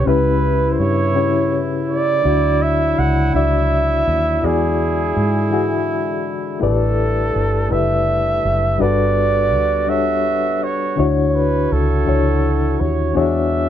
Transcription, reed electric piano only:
0.04 C#3 C#4 E4 G4 B4
1.13 C#3 C#4 E4 G4 C#5
2.22 D3 D4 E4 F#4 D5
3.33 E3 D4 E4 F#4 D5
4.41 E3 E4 F#4 G#4 D5
5.50 E3 E4 F#4 G#4 E5
6.60 A3 E4 G4 B4 D5
7.69 A3 E4 G4 B4 E5
8.78 G3 D4 F#4 A4 B4
9.87 G3 D4 F#4 A4 C#5
10.96 D3 D4 E4 F#4 C#5
12.05 E3 D4 E4 F#4 C#5
13.13 E3 B3 D4 F#4 G#4 C#5

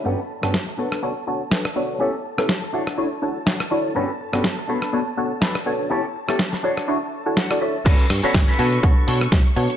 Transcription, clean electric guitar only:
0.04 C#4 F#4 G4 A4 B4
0.29 muted clean electric guitar stroke
0.42 C#4 F#4 G4 A4 B4
0.67 muted clean electric guitar stroke
0.78 D4 A4 B4
1.15 muted clean electric guitar stroke
1.51 D4 A4 B4
1.75 muted clean electric guitar stroke
2.00 C#4 G4 A4
2.24 muted clean electric guitar stroke
2.38 C#4 G4 A4
2.62 muted clean electric guitar stroke
2.73 D4 F#4 C#5
3.11 muted clean electric guitar stroke
3.46 D4 F#4 C#5
3.70 muted clean electric guitar stroke
3.95 C#4 F#4 G4 A4 B4
4.19 muted clean electric guitar stroke
4.33 C#4 F#4 G4 A4 B4
4.57 muted clean electric guitar stroke
4.68 D4 A4 B4
5.06 muted clean electric guitar stroke
5.41 D4 A4 B4
5.65 muted clean electric guitar stroke
5.90 C#4 G4 A4
6.14 muted clean electric guitar stroke
6.28 C#4 G4 A4
6.52 muted clean electric guitar stroke
6.63 D4 F#4 C#5
7.01 muted clean electric guitar stroke
7.36 D4 F#4 C#5 F#5
7.61 E5, muted clean electric guitar stroke
7.85 C#4 F#4 A4 B4
8.23 C#4 F#4 A4 B4
8.47 C#4 F#4 A4 B4
8.58 D4 F#4 A4 B4
9.56 muted clean electric guitar stroke

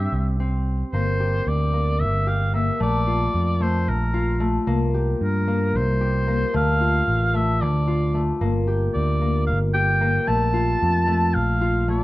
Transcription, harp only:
Already playing: C4 G4
0.40 C4
0.94 A#3
1.20 G4
1.73 A#3
2.27 G4
2.53 A#3
2.80 A3
3.07 F4
3.60 A3
4.14 F4
4.40 A3
4.67 A#3
4.94 G4
5.48 A#3
6.01 G4
6.27 A#3
6.54 A3
6.81 F4
7.34 A3
7.87 F4
8.14 A3
8.41 A#3
8.67 G4
9.21 A#3
9.74 G4
10.01 A#3
10.27 A3
10.53 F4
11.07 A3
11.61 F4
11.88 A3

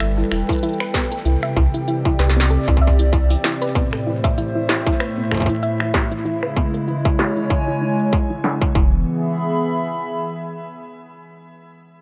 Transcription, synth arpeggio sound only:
0.00 E5
0.18 E4
0.32 E4
0.49 E4
0.63 E4
0.80 B4
0.94 B3
1.12 A4
1.25 E4
1.43 E5
1.57 E4
1.74 E4
1.88 E4
2.05 E4
2.19 B4
2.37 B3
2.50 A4
2.68 E4
2.82 E5
2.99 E4
3.13 E4
3.30 E4
3.44 E4
3.62 B4
3.75 B3
3.93 A4
4.07 E4
4.24 E5
4.38 E4
4.55 E4
4.69 E4
4.87 E4
5.00 B4
5.18 B3
5.32 A4
5.49 E4
5.63 E5
5.80 E4
5.94 E4
6.12 E4
6.25 E4
6.43 B4
6.57 B3
6.74 A#4
6.88 E4
7.05 E5
7.19 E4
7.37 E4
7.50 E4
7.68 E4
7.82 D#4
8.13 G#4
8.30 E4
8.44 G#4
8.62 E4
8.75 E4

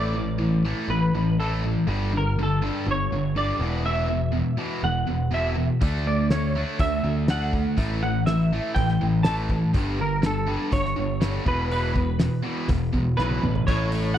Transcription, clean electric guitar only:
Already playing: D5
0.90 B4
1.40 A4
2.17 A#4
2.43 A4
2.91 C#5
3.37 D5
3.86 E5
4.84 F#5
5.34 E5
6.07 D5
6.31 C#5
6.80 E5
7.30 F#5
8.03 F#5
8.26 E5
8.75 G5
9.23 A5
10.01 A#4
10.26 A4
10.73 C#5
11.48 B4
11.72 B4
13.17 B4
13.67 C#5
14.14 F#5

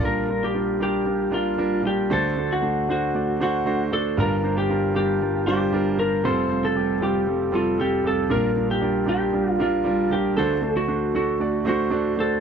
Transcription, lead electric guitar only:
0.05 A#4
0.44 G4
0.83 G4
1.34 F4
1.87 G4
2.13 A4
2.53 F#4
2.91 F#4
3.43 F#4
3.93 A4
4.20 A#4
4.58 G4
4.96 G4
5.47 G4
5.99 A#4
6.25 C5
6.65 A4
7.03 G4
7.55 F4
7.81 G4
8.07 A4
8.32 A#4
8.71 G4
9.09 G4
9.51 F4
9.61 F4
10.12 G4
10.37 A4
10.77 F#4
11.16 F#4
11.69 F#4
12.20 A4

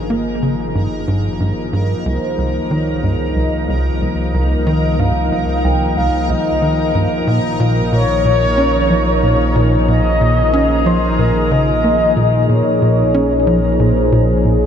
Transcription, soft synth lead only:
2.06 C5
2.71 C#5
3.04 D#5
4.67 D#5
4.99 F5
5.64 G5
5.97 F5
6.30 D#5
7.93 C#5
8.25 C#5
9.88 D#5
10.86 C5
11.19 A#4
11.51 D#5
12.49 C#5
13.80 C5

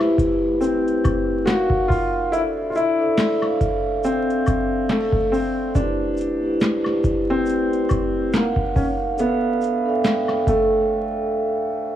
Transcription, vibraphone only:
Already playing: B4 C5
0.00 A3 E4 G4 B4 C5
1.45 D#4 A#4 C#5 F5
1.49 F#5
2.31 D4 A4 C5 E5
2.36 D5
2.98 D4 A4 C5 E5
3.02 D5
3.41 D4 A4 C5 E5
3.46 F5
5.76 A3 E4 G4 B4
5.81 C5
6.42 A3 E4 G4 B4
6.46 D5
6.84 A3 E4 G4 B4
6.89 C5
8.33 D#4 A#4 C#5 F5
8.38 F#5
9.16 D4 A4 D5 E5
9.21 F5
9.85 D4 A4 D5 E5
9.90 G5
10.25 D4 A4 C5 E5
10.30 G5

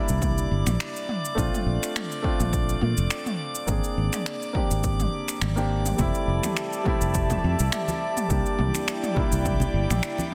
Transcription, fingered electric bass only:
0.10 C2
0.51 G1
0.67 A#1
1.38 A#1
1.66 A#1
2.40 A#1
2.82 A#2
2.98 F1
3.68 G#1
3.97 G#1
4.71 G#1
5.42 G#1
5.99 F1
6.28 F1
7.01 F1
7.44 F2
7.60 C2
8.30 C2
8.59 C2
9.32 C2
9.74 G1
9.90 A#1

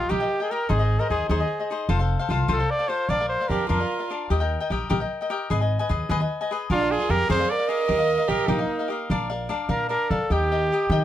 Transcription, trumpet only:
Already playing: F4
0.10 G4
0.43 G#4
0.50 A#4
0.70 G#4
1.00 A#4
1.10 G#4
1.29 G#4
2.52 A4
2.70 D5
2.88 C5
3.09 D5
3.28 C5
3.48 A#4
3.68 A#4
6.72 F4
6.91 G#4
7.10 A#4
7.30 C5
7.50 D5
7.68 D#5
8.29 A#4
8.47 D#4
9.70 A#4
9.89 A#4
10.10 A4
10.32 G4

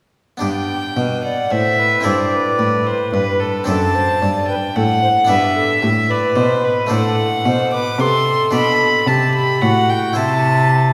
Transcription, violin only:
0.42 G5
1.25 F#5
1.51 E5
2.05 D5
2.86 C5
3.13 B4
3.40 A4
3.68 A5
4.48 G5
4.76 F#5
5.30 E5
6.10 D5
6.36 C5
6.64 B4
6.92 F#5
7.73 D6
8.00 C6
8.54 B5
9.07 A5
9.35 B5
9.61 F#5
9.90 G5
10.16 A5

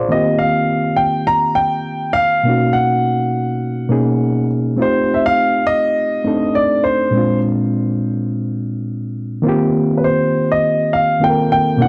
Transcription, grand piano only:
0.12 D#5
0.39 F5
0.96 G5
1.27 A#5
1.55 G5
2.13 F5
2.73 F#5
4.82 C5
5.14 E5
5.26 F5
5.67 D#5
6.55 D5
6.84 C5
9.97 B4
10.04 C5
10.52 D#5
10.93 F5
11.24 G5
11.52 G5
11.82 F#5

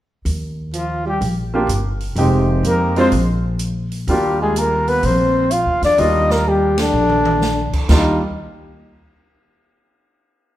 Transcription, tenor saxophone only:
0.74 F3
1.05 G3
2.66 A#3
2.98 C4
4.10 G3
4.41 G#3
4.58 A#3
4.89 B3
5.06 C4
5.52 F4
5.85 D4
6.01 D#4
6.32 A#3
6.47 G3
6.79 D3
7.88 D#4

